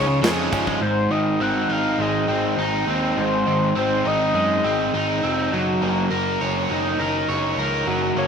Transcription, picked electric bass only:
Already playing: C#2
0.22 F2
0.53 G1
0.80 G#1
1.10 G#1
1.39 G#1
1.69 G#1
1.99 G#1
2.28 G#1
2.58 G#1
2.87 D#2
3.17 G#1
3.47 G#1
3.76 G#1
4.05 G#1
4.34 F#2
4.64 G#1
4.94 G#1
5.23 F1
5.52 F#1
5.82 F#1
6.11 F#1
6.41 F#1
6.70 F#1
6.98 F#1
7.28 F#1
7.57 C#2
7.86 F#1
8.15 F#1

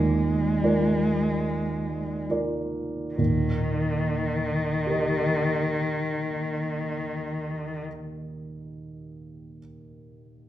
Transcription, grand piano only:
Already playing: D#2 F4 A#4 D5
0.63 F4 A#4 D5
2.29 F4 A#4 D5
3.18 D#2 A#2
4.86 G4 A#4
4.91 D#5

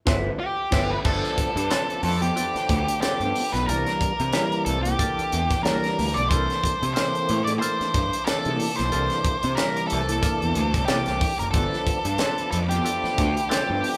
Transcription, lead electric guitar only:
0.40 G4
0.90 B4
1.05 A4
2.03 A4
2.22 G4
3.01 G4
3.52 B4
3.66 A#4
4.65 A4
4.83 G4
5.63 A#4
6.14 D5
6.29 C5
6.94 C5
7.44 D5
7.59 C5
8.24 A4
8.76 C5
9.55 A#4
9.88 A4
10.86 G4
11.39 A#4
11.51 A4
12.51 A4
12.69 G4
13.49 G4

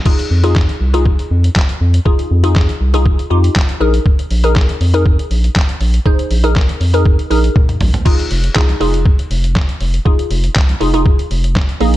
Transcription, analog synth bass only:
0.31 F2
0.81 C2
1.31 F2
1.81 F2
2.31 F2
2.81 C2
3.31 F2
3.81 A#1
4.31 A#1
4.81 F2
5.31 A#1
5.81 A#1
6.31 A#1
6.81 F2
7.31 A#1
7.81 A#1
8.31 F1
8.56 C2
8.81 F1
9.31 F1
9.81 F1
10.31 F1
10.56 C2
10.81 F1
11.31 F1
11.81 A#1

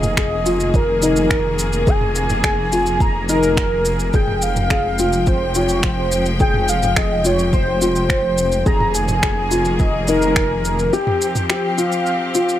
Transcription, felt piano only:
0.17 G#4
0.46 F4
1.03 D#4
1.87 G#4
2.44 G#4
2.72 F4
3.29 D#4
4.14 G#4
4.71 G#4
4.99 F4
5.56 F4
6.41 G#4
6.96 G#4
7.25 F4
7.82 F4
8.66 G#4
9.23 G#4
9.51 F4
10.08 D#4
10.93 G4
11.50 G4
11.78 F4
12.35 F4

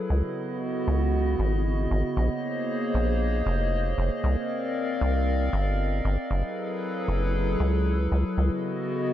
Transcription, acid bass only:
0.10 C#2
0.88 C#2
1.39 G#1
1.91 G#1
2.17 A#1
2.94 A#1
3.46 F1
3.98 F1
4.24 C2
5.01 C2
5.53 G1
6.05 G1
6.31 F#1
7.08 F#1
7.60 C#2
8.12 C#2
8.38 C#2

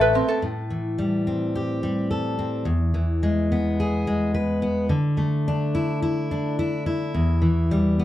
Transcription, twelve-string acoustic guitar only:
Already playing: A2 E3 B3 C4 E4
0.14 C4 E4
0.27 B3 C4 E4

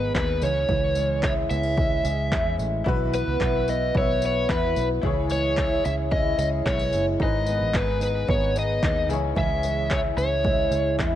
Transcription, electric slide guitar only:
Already playing: B4
0.15 B4
0.43 C#5
1.24 C#5
1.51 E5
3.15 B4
3.69 D#5
3.98 C#5
4.26 C#5
4.51 B4
5.32 C#5
5.86 E5
6.12 D#5
6.39 D#5
6.67 C#5
7.23 D#5
7.76 B4
8.03 B4
8.30 C#5
8.59 D#5
9.38 E5
9.92 C#5
10.18 C#5

